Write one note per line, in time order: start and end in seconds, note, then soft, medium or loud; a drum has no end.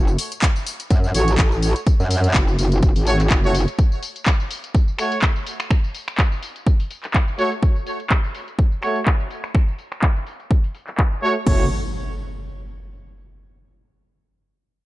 0.00 0.17 F#1 medium
0.08 tambourine soft
0.19 open hi-hat loud
0.19 tambourine medium
0.32 closed hi-hat soft
0.32 tambourine soft
0.42 kick loud
0.42 clap loud
0.42 closed hi-hat medium
0.42 tambourine soft
0.56 tambourine soft
0.67 open hi-hat loud
0.67 tambourine medium
0.80 closed hi-hat soft
0.80 tambourine soft
0.91 1.13 F#2 loud
0.91 kick loud
0.91 closed hi-hat medium
0.91 tambourine soft
1.04 tambourine soft
1.15 1.37 A1 loud
1.15 1.32 A3 medium
1.15 1.32 F#4 medium
1.15 1.32 C#5 medium
1.15 open hi-hat loud
1.15 tambourine medium
1.28 closed hi-hat soft
1.28 tambourine soft
1.38 1.74 A1 medium
1.38 kick loud
1.38 clap loud
1.38 closed hi-hat medium
1.38 tambourine soft
1.52 tambourine soft
1.63 open hi-hat loud
1.63 tambourine medium
1.76 closed hi-hat soft
1.76 tambourine soft
1.87 kick loud
1.87 closed hi-hat medium
1.87 tambourine soft
2.00 2.33 F#2 loud
2.00 tambourine soft
2.11 open hi-hat loud
2.11 tambourine medium
2.24 closed hi-hat soft
2.24 tambourine soft
2.34 2.57 F#1 loud
2.34 kick loud
2.34 clap loud
2.34 closed hi-hat medium
2.34 tambourine soft
2.48 tambourine soft
2.59 2.94 F#1 loud
2.59 open hi-hat loud
2.59 tambourine medium
2.72 closed hi-hat soft
2.72 tambourine soft
2.83 kick loud
2.83 closed hi-hat medium
2.83 tambourine soft
2.96 3.29 G#1 loud
2.96 open hi-hat medium
2.96 tambourine soft
3.07 3.18 A3 medium
3.07 3.18 F#4 medium
3.07 3.18 C#5 loud
3.07 open hi-hat loud
3.07 tambourine medium
3.19 clap soft
3.19 closed hi-hat soft
3.19 tambourine soft
3.30 3.66 F#1 loud
3.30 kick loud
3.30 clap loud
3.30 closed hi-hat medium
3.30 tambourine soft
3.44 3.53 A3 loud
3.44 3.53 F#4 medium
3.44 3.53 C#5 loud
3.44 tambourine soft
3.55 open hi-hat loud
3.55 tambourine medium
3.68 closed hi-hat soft
3.68 tambourine soft
3.79 kick loud
3.79 closed hi-hat medium
3.79 tambourine soft
3.92 tambourine soft
4.03 open hi-hat loud
4.03 tambourine medium
4.16 closed hi-hat soft
4.16 tambourine soft
4.26 kick loud
4.26 clap loud
4.26 closed hi-hat medium
4.26 tambourine soft
4.40 tambourine soft
4.51 open hi-hat loud
4.51 tambourine medium
4.64 closed hi-hat soft
4.64 tambourine soft
4.75 kick loud
4.75 closed hi-hat medium
4.75 tambourine soft
4.88 tambourine soft
4.99 5.16 A3 medium
4.99 5.16 F#4 medium
4.99 5.16 C#5 medium
4.99 finger snap medium
4.99 open hi-hat loud
4.99 tambourine medium
5.12 closed hi-hat medium
5.12 tambourine soft
5.22 kick loud
5.22 clap loud
5.22 closed hi-hat medium
5.22 tambourine soft
5.36 tambourine soft
5.47 open hi-hat loud
5.47 tambourine medium
5.60 finger snap medium
5.60 closed hi-hat soft
5.60 tambourine soft
5.71 finger snap medium
5.71 kick loud
5.71 closed hi-hat medium
5.71 tambourine soft
5.84 tambourine soft
5.95 open hi-hat loud
5.95 tambourine medium
6.08 finger snap medium
6.08 closed hi-hat soft
6.08 tambourine soft
6.18 kick loud
6.18 clap loud
6.18 closed hi-hat medium
6.18 tambourine soft
6.32 tambourine soft
6.43 open hi-hat loud
6.43 tambourine medium
6.56 closed hi-hat soft
6.56 tambourine soft
6.67 kick loud
6.67 closed hi-hat medium
6.67 tambourine soft
6.80 open hi-hat medium
6.80 tambourine soft
6.91 open hi-hat loud
6.91 tambourine medium
7.03 clap soft
7.03 closed hi-hat medium
7.03 tambourine soft
7.14 kick loud
7.14 clap loud
7.14 closed hi-hat medium
7.14 tambourine soft
7.28 tambourine soft
7.38 7.50 A3 medium
7.38 7.50 F#4 medium
7.38 7.50 C#5 loud
7.38 open hi-hat loud
7.38 tambourine medium
7.52 closed hi-hat soft
7.52 tambourine soft
7.63 kick loud
7.63 closed hi-hat medium
7.63 tambourine soft
7.76 tambourine soft
7.87 open hi-hat loud
7.87 tambourine medium
8.00 closed hi-hat medium
8.00 tambourine soft
8.10 kick loud
8.10 clap loud
8.10 closed hi-hat medium
8.10 tambourine soft
8.24 tambourine soft
8.35 open hi-hat medium
8.35 tambourine medium
8.48 closed hi-hat soft
8.48 tambourine soft
8.59 kick loud
8.59 closed hi-hat medium
8.59 tambourine soft
8.72 tambourine soft
8.83 9.00 A3 medium
8.83 9.00 F#4 medium
8.83 9.00 C#5 medium
8.83 finger snap medium
8.83 open hi-hat loud
8.83 tambourine medium
8.96 closed hi-hat medium
8.96 tambourine soft
9.06 kick loud
9.06 clap loud
9.06 closed hi-hat medium
9.06 tambourine soft
9.20 tambourine soft
9.31 open hi-hat loud
9.31 tambourine medium
9.44 finger snap medium
9.44 closed hi-hat soft
9.44 tambourine soft
9.55 finger snap medium
9.55 kick loud
9.55 closed hi-hat medium
9.55 tambourine soft
9.68 tambourine soft
9.79 open hi-hat loud
9.79 tambourine medium
9.92 finger snap medium
9.92 closed hi-hat medium
9.92 tambourine soft
10.02 kick loud
10.02 clap loud
10.02 closed hi-hat medium
10.02 tambourine soft
10.16 tambourine soft
10.27 open hi-hat loud
10.27 tambourine medium
10.40 closed hi-hat medium
10.40 tambourine soft
10.51 kick loud
10.51 closed hi-hat medium
10.51 tambourine soft
10.64 open hi-hat medium
10.64 tambourine soft
10.75 open hi-hat loud
10.75 tambourine medium
10.87 clap soft
10.87 closed hi-hat medium
10.87 tambourine soft
10.98 finger snap medium
10.98 kick loud
10.98 clap loud
10.98 closed hi-hat medium
10.98 tambourine soft
11.12 tambourine soft
11.23 11.34 A3 medium
11.23 11.34 F#4 medium
11.23 11.34 C#5 loud
11.23 open hi-hat loud
11.23 tambourine medium
11.36 closed hi-hat medium
11.47 11.69 F#1 medium
11.47 11.65 A3 medium
11.47 11.65 F#4 medium
11.47 11.65 C#5 medium
11.47 kick loud
11.47 crash medium
11.47 impact medium